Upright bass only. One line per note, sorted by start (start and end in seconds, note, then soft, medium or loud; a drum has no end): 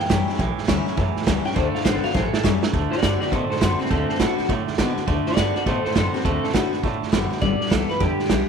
0.10 0.24 F#2 medium
0.39 0.53 A1 loud
0.58 muted upright bass stroke medium
0.68 0.82 D2 loud
0.87 muted upright bass stroke medium
0.97 1.11 F#2 loud
1.16 muted upright bass stroke medium
1.27 1.41 C#2 medium
1.45 muted upright bass stroke medium
1.56 1.70 D2 loud
1.85 1.99 G1 medium
2.04 muted upright bass stroke medium
2.15 2.29 A1 loud
2.33 muted upright bass stroke medium
2.44 2.58 F#2 loud
2.63 muted upright bass stroke medium
2.73 2.87 D2 loud
2.92 muted upright bass stroke medium
3.03 3.16 G2 medium
3.21 muted upright bass stroke medium
3.32 3.46 B2 medium
3.50 muted upright bass stroke medium
3.61 3.75 F#2 medium
3.80 muted upright bass stroke medium
3.91 4.04 D2 loud
4.09 muted upright bass stroke medium
4.20 4.34 A2 medium
4.39 muted upright bass stroke medium
4.49 4.63 A2 loud
4.68 muted upright bass stroke medium
4.78 4.92 B2 medium
4.97 muted upright bass stroke medium
5.08 5.21 D2 loud
5.27 muted upright bass stroke medium
5.37 5.51 G2 medium
5.56 muted upright bass stroke medium
5.66 5.80 B2 loud
5.85 muted upright bass stroke medium
5.96 6.09 F#2 medium
6.14 muted upright bass stroke medium
6.25 6.39 D2 loud
6.44 muted upright bass stroke medium
6.54 6.68 A2 medium
6.72 muted upright bass stroke medium
6.83 6.97 A2 medium
7.02 muted upright bass stroke medium
7.13 7.26 F#1 medium
7.31 muted upright bass stroke medium
7.42 7.56 G1 loud
7.60 muted upright bass stroke medium
7.71 7.85 C2 medium
8.01 8.14 E2 loud
8.30 8.44 B1 medium